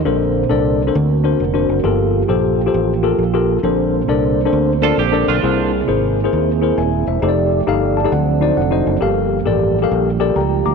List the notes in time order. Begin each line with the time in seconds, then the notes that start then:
Already playing: A#3
0.05 A#1 A#2 D3 C4 D4 A4 A#4 C5
0.50 C2 D4 A4 A#4 D5
0.87 D4 A4 A#4 C5
0.94 D2 D3 D4 F#4 A#4
1.24 D4 F#4 A#4 C5
1.40 F1
1.54 D4 F#4 A#4 C5
1.69 F#1
1.84 G1 G2 F3 A#3 F4 G4 A4 A#4
2.28 A#1 F4 G4 A4 C5
2.66 F4 G4 A4 C5
2.74 A1
3.03 F4 G4 A4 A#4
3.19 A#1
3.33 F4 G4 A4 A#4
3.63 A#1 A#2 D3 A#3 C4 D4 A4 A#4 C5
4.08 C2 D4 A4 A#4 D5
4.45 D4 A4 A#4 C5
4.53 D2
4.82 D4 F4 A4 A#4 D5
4.98 A#1 G4
5.12 D4 A4 A#4 D5
5.28 B1 D4 F4
5.43 C2 C3 A#3 E4 G#4 A#4 C5
5.88 G#1 E4 G#4 A#4 C5
6.24 E4 G#4 A#4 C5
6.33 D#2
6.62 E4 G#4 A#4 C5
6.78 D#1 E5 G#5
7.07 E1 C5 E5
7.22 F1 F3 A3 D#4 G4 A4 C5 D5
7.29 D5
7.67 G1 D#4 G4 A4 F5
7.97 A5
8.04 D#4 G4 A4 D5
8.12 D2 D3 F#3 C4 D4 A4 F#5
8.41 D#4 F#4 C5 D5
8.57 F1 F#5
8.71 D#4 F#4 C5 D#5
8.87 F#1
9.01 G1 G2 F3 G3 A#3 F4 G4 A4 A#4 F5
9.45 A1 G4 A4 A#4 D5
9.82 G4 A4 A#4 F5
9.91 A#1
10.20 G4 A4 A#4 D5
10.36 C#2 G5 A#5
10.66 D2 A#5 D6